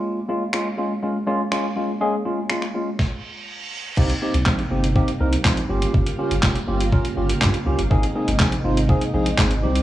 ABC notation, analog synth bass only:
X:1
M:4/4
L:1/16
Q:1/4=122
K:Bbdor
V:1 name="Analog synth bass" clef=bass
z16 | z16 | C,,2 z C,, B,,,2 G,,,3 z C,,2 B,,,2 G,,,2 | G,,,2 z G,,, F,,,2 G,,,3 z G,,,2 G,, z C,, G,,, |
A,,,2 z A,,, B,,,2 A,,,3 z B,,,2 A,,,2 C,,2 |]